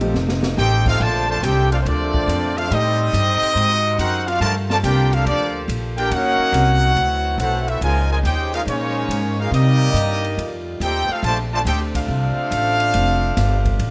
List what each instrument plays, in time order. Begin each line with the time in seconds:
Already playing: upright bass A#1, saxophone section C3 G3 A#3 D#4
0.01 grand piano F3 A3 C4 D#4 G4, ride
0.14 upright bass F1, saxophone section F3 A3 D#4, snare
0.29 snare
0.43 snare
0.57 upright bass A1, trumpet section D#4 A4 C5 G5, trombone section G4, snare, hi-hat pedal
0.86 trombone section A3 C4 F4, trumpet section D#4 A4 C5 F5, kick, crash
1.00 upright bass A#1, saxophone section A#2 C3 A3 D4, trombone section D3 F3 A3, trumpet section F4 C5 D5 A5
1.28 trombone section D3 F3 A3, trumpet section F4 C5 D5 A5
1.43 upright bass C2, trumpet section D#4 A4 C5 G5, trombone section G4, hi-hat pedal, ride
1.71 trombone section A3 D4 F4, trumpet section D4 A4 C5 F5, ride
1.82 upright bass D2, trombone section A3, trumpet section C5
1.86 trombone section F3 D4, trumpet section C4 F4 A4 D5, ride
2.14 kick
2.27 upright bass F2, hi-hat pedal, ride
2.56 trombone section A3 D4 F4, trumpet section D4 A4 C5 F5, ride
2.70 upright bass A2, saxophone section C3 G3 D#4, trombone section G3 C4 D#4, trumpet section C4 G4 A4 D#5, ride
3.13 upright bass G2, hi-hat pedal, ride
3.42 muted upright bass stroke, ride
3.55 upright bass G#2, saxophone section G#3 A#3 F#4, ride
3.98 upright bass F#2, trombone section C4 D#4 F#4, trumpet section D#4 A#4 C5 F#5, hi-hat pedal, ride
4.27 trumpet section D4 F#4 A#4 F5, trombone section F4, ride
4.40 upright bass G2, trombone section D3 F3 A3, saxophone section F3 G4 A4, trumpet section F4 A#4 D5 A5, ride
4.70 trombone section D3 F3 A3, trumpet section F4 A#4 D5 A5, snare
4.83 upright bass C2, trombone section A#3 D4 G4, trumpet section F4 A#4 D5 G5, hi-hat pedal, ride
5.13 trombone section A#3 D4 F4, trumpet section D4 A4 A#4 F5, ride
5.26 upright bass D2, trombone section F3 A#3 D4, trumpet section A#3 F4 A4 D5, ride
5.68 upright bass A#1, hi-hat pedal, ride
5.96 trombone section A#3 D4 G4, trumpet section F4 A#4 D5 G5, ride
6.11 upright bass D#2, saxophone section F#3 A#3 C#4 D#4, trombone section A#3 C#4 F#4, trumpet section D#4 A#4 C#5 F#5, ride
6.39 muted upright bass stroke
6.52 upright bass C2, hi-hat pedal, ride
6.95 upright bass D2, saxophone section B3 C4 E4, ride
7.38 upright bass B1, trombone section A3 C4 F#4, trumpet section E4 A4 C5 F#5, hi-hat pedal, ride
7.67 trombone section A3 C4 E4, trumpet section C4 F#4 A4 E5, ride
7.81 upright bass C#2, trombone section A#2 F3 G#3, saxophone section C#3 F3 A#3 D#4, trumpet section F4 A#4 D#5 G#5, ride
8.09 trombone section A#2 F3 G#3, trumpet section F4 A#4 D#5 G#5
8.23 upright bass D#2, trumpet section D#4 G#4 C5 G5, trombone section G4, hi-hat pedal, ride
8.53 trombone section G#3 A#3 F4, trumpet section D#4 G#4 A#4 F5, ride
8.67 upright bass A#2, trombone section G#3 A#3 C#4, trumpet section A#3 F4 G#4 C#5, ride
9.08 upright bass G#2, hi-hat pedal, ride
9.39 trombone section G#3 A#3 F4, trumpet section D#4 G#4 A#4 F5
9.51 upright bass C3, saxophone section C3 D#3 D#4, trombone section G3 A#3 D#4, trumpet section A#3 G4 D5 D#5, ride
9.94 upright bass G2, hi-hat pedal, ride
10.24 ride
10.37 upright bass F2, saxophone section G3 A3 F4, ride
10.80 upright bass D#2, trombone section C4 D#4 G4, trumpet section D#4 A4 C5 G5, hi-hat pedal, ride
11.09 trombone section A3 C4 F4, trumpet section D#4 A4 C5 F5, muted upright bass stroke
11.23 upright bass A#1, saxophone section C3 C4 D4, trombone section D3 F3 A3, trumpet section F4 C5 D5 A5, ride
11.52 trombone section D3 F3 A3, trumpet section F4 C5 D5 A5
11.65 upright bass D2, trumpet section D#4 A4 C5 G5, trombone section G4, hi-hat pedal, ride
11.95 trombone section A3 D4 F4, trumpet section D4 A4 C5 F5, kick, ride
12.08 upright bass C2
12.37 muted upright bass stroke
12.51 upright bass A1, hi-hat pedal, ride
12.80 ride
12.94 upright bass F1, ride
13.37 upright bass G1, snare, hi-hat pedal, ride
13.65 kick, ride
13.79 upright bass A1, ride